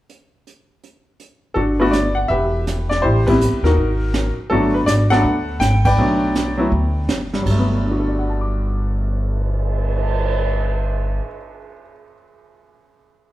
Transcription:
0.09 closed hi-hat medium
0.47 closed hi-hat medium
0.84 closed hi-hat medium
1.20 closed hi-hat medium
1.54 2.26 G1 medium
1.54 1.79 D4 medium
1.54 1.80 F#4 medium
1.54 1.60 A4 medium
1.54 brush sweep soft
1.54 kick soft
1.80 1.91 A3 medium
1.80 1.92 B3 medium
1.80 1.92 D4 medium
1.80 1.92 F#4 medium
1.80 1.93 B4 medium
1.91 2.17 D5 medium
1.91 snare medium
1.91 hi-hat pedal medium
2.15 2.29 F#5 medium
2.28 3.00 E1 medium
2.28 3.00 G4 medium
2.28 3.00 B4 medium
2.28 2.63 E5 medium
2.28 brush sweep soft
2.28 kick soft
2.67 snare medium
2.67 hi-hat pedal medium
2.89 3.03 D5 medium
2.89 snare soft
3.02 3.49 A1 medium
3.02 3.28 E4 medium
3.02 3.27 G4 medium
3.02 3.25 C5 medium
3.02 brush sweep soft
3.02 kick soft
3.27 3.39 G3 medium
3.27 3.39 B3 medium
3.27 3.39 C4 medium
3.27 3.40 E4 medium
3.27 3.74 G4 medium
3.27 3.61 B4 medium
3.27 kick medium
3.27 ride medium
3.41 hi-hat pedal medium
3.52 3.62 C2 medium
3.63 3.75 D#2 medium
3.63 4.35 D#4 medium
3.63 4.35 F#4 medium
3.63 4.34 A#4 medium
3.63 snare soft
3.77 4.34 G#1 medium
3.77 brush sweep soft
3.77 kick soft
4.14 snare medium
4.14 hi-hat pedal medium
4.38 muted upright bass stroke soft
4.50 4.85 G1 medium
4.50 4.72 F#3 medium
4.50 4.73 A3 medium
4.50 4.73 B3 medium
4.50 5.11 D4 medium
4.50 5.21 F#4 medium
4.50 4.72 A4 medium
4.50 brush sweep soft
4.50 kick soft
4.74 4.79 B4 medium
4.86 5.21 G#1 medium
4.86 4.92 D5 medium
4.86 snare medium
4.86 hi-hat pedal medium
5.10 5.23 F#3 medium
5.10 5.23 A3 medium
5.10 5.23 B3 medium
5.10 5.23 D4 medium
5.10 5.81 A4 medium
5.10 5.81 B4 medium
5.10 5.57 F#5 loud
5.10 snare soft
5.24 5.58 D2 medium
5.24 brush sweep soft
5.24 kick soft
5.59 5.94 G#1 medium
5.59 5.84 G5 loud
5.59 snare medium
5.59 hi-hat pedal soft
5.85 7.05 B4 medium
5.85 7.05 D5 medium
5.85 7.05 G5 loud
5.85 kick medium
5.85 ride medium
5.97 6.67 B1 medium
5.97 6.54 F#3 medium
5.97 6.54 A3 medium
5.97 6.55 B3 medium
5.97 6.54 D4 medium
5.97 brush sweep soft
6.35 snare medium
6.35 hi-hat pedal medium
6.57 6.70 F#3 medium
6.57 6.70 A3 medium
6.57 6.70 B3 medium
6.57 6.70 E4 medium
6.72 7.06 D2 medium
6.72 brush sweep soft
6.72 kick soft
7.07 7.42 F#1 medium
7.07 snare medium
7.07 hi-hat pedal soft
7.34 11.10 G2 medium
7.34 snare soft
7.42 11.18 G1 medium
7.42 11.18 F#3 medium
7.46 kick soft
7.46 crash medium
7.50 11.27 A3 medium
7.59 11.35 B3 medium
7.70 cymbal swell soft
7.84 11.56 D4 soft
7.91 11.64 F#4 soft
8.00 11.72 A4 soft
8.08 11.81 D5 soft
8.19 11.91 F#5 soft
8.29 12.02 A5 soft
8.41 12.14 D6 soft

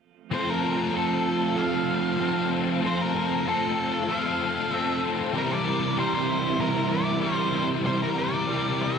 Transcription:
0.31 1.55 F3 medium
0.31 0.92 A3 medium
0.31 0.64 C4 medium
0.31 0.63 F4 medium
0.31 0.62 A4 medium
0.31 0.50 C5 medium
0.50 0.96 A#4 medium
0.62 0.93 C4 medium
0.62 0.93 F4 medium
0.62 0.94 A4 medium
0.92 1.54 A3 medium
0.92 1.56 C4 medium
0.92 1.56 F4 medium
0.92 1.56 A4 medium
0.96 1.60 A4 medium
1.55 2.51 F3 medium
1.55 2.17 A3 loud
1.55 2.19 C4 medium
1.55 2.19 F4 medium
1.55 2.19 A4 medium
1.55 2.48 F5 medium
2.18 2.81 A3 medium
2.18 2.82 C4 medium
2.18 2.82 F4 medium
2.18 2.83 A4 medium
2.51 2.81 C4 medium
2.81 3.45 F3 medium
2.81 3.44 A3 medium
2.81 3.15 C4 medium
2.81 3.14 F4 medium
2.81 3.12 A4 medium
2.86 3.01 C5 medium
3.01 3.48 A#4 medium
3.13 3.46 C4 medium
3.13 3.46 F4 medium
3.13 3.46 A4 medium
3.45 4.08 A3 medium
3.45 4.09 C4 medium
3.45 4.09 F4 medium
3.45 4.09 A4 medium
3.45 4.12 A4 medium
4.08 5.03 F3 medium
4.08 4.70 A3 medium
4.08 4.72 C4 medium
4.08 4.72 F4 medium
4.08 4.72 A4 medium
4.08 4.71 F5 medium
4.71 5.32 A3 medium
4.71 5.34 C4 medium
4.71 5.34 F4 medium
4.71 5.34 A4 medium
4.71 5.00 E5 medium
5.03 6.62 C4 medium
5.33 6.01 C3 medium
5.33 6.01 E3 medium
5.33 5.66 G3 medium
5.33 5.66 C4 medium
5.33 5.65 E4 medium
5.33 5.64 A#4 loud
5.38 5.53 A#4 medium
5.52 5.99 D5 medium
5.65 5.96 G3 medium
5.65 5.97 C4 medium
5.65 5.98 E4 medium
5.65 5.98 A#4 medium
5.97 6.59 G3 medium
5.97 6.60 C4 medium
5.97 6.60 E4 medium
5.97 6.60 A#4 medium
5.97 6.13 C5 medium
6.15 6.62 C5 medium
6.29 6.91 E4 medium
6.59 7.54 C3 medium
6.59 7.86 E3 medium
6.59 7.22 G3 medium
6.59 7.23 C4 loud
6.59 7.24 E4 loud
6.59 6.93 A#4 medium
6.59 7.24 A#4 loud
6.92 8.79 E4 medium
6.92 7.21 D5 medium
7.21 7.86 G3 medium
7.21 7.87 C4 medium
7.21 7.88 E4 medium
7.21 7.87 A#4 medium
7.21 7.66 C5 medium
7.54 8.98 C4 medium
7.86 8.49 C3 medium
7.86 8.56 E3 medium
7.86 8.19 G3 medium
7.86 8.19 C4 loud
7.86 8.19 E4 medium
7.86 8.17 A#4 medium
7.86 8.02 C5 medium
8.02 8.18 A#4 medium
8.18 8.50 G3 medium
8.18 8.51 C4 medium
8.18 8.52 E4 medium
8.18 8.52 A#4 medium
8.18 8.82 D5 loud
8.51 8.98 G3 medium
8.51 8.98 C4 medium
8.51 8.98 E4 medium
8.51 8.98 A#4 medium
8.79 8.98 E4 medium
8.79 8.98 E5 medium

